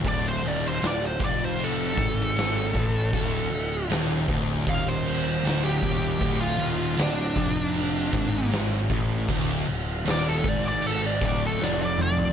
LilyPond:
<<
  \new Staff \with { instrumentName = "Lead electric guitar" } { \time 4/4 \key d \phrygian \tempo 4 = 78 d''16 c''16 d''16 c''16 d''16 c''16 d''16 c''16 a'2~ | a'4 r4 f''16 c''4 g'8.~ | g'16 f'8. d'2 r4 | r4 d''16 a'16 d''16 d''16 a'16 d''16 d''16 a'16 d''16 d''16 d''8 | }
  \new Staff \with { instrumentName = "Distorted electric guitar" } { \clef bass \time 4/4 \key d \phrygian d,8 ees,8 d,8 f,4 gis,4 a,8 | d,8 d,8 ees,8 d,8 ees,4 d,8 ees,8 | d,8 ees,8 d,8 f,4 gis,4 a,8 | d,8 d,8 ees,8 gis,4 d,8 f,4 | }
  \new Staff \with { instrumentName = "Picked electric bass" } { \clef bass \time 4/4 \key d \phrygian d,,8 ees,,8 d,,8 f,,4 gis,,4 a,,8 | d,,8 d,,8 ees,,8 d,,8 ees,,4 d,,8 ees,,8 | d,,8 ees,,8 d,,8 f,,4 gis,,4 a,,8 | d,,8 d,,8 ees,,8 gis,,4 d,,8 f,,4 | }
  \new DrumStaff \with { instrumentName = "Drums" } \drummode { \time 4/4 <cymc bd>8 cymc8 <cymc sn>8 <cymc bd>8 cymc8 <cymc bd>16 sn16 <cymc sn>8 <cymc bd>8 | <cymc bd>8 cymc8 <cymc sn>8 <cymc bd>8 <cymc bd>8 cymc8 <cymc sn>8 <cymc bd>8 | <cymc bd>8 cymc8 <cymc sn>8 <cymc bd>8 cymc8 <cymc bd>8 <cymc sn>8 <cymc bd>8 | <cymc bd>8 cymc8 <cymc sn>8 <cymc bd>8 cymc8 <cymc bd>8 sn8 toml16 tomfh16 | }
>>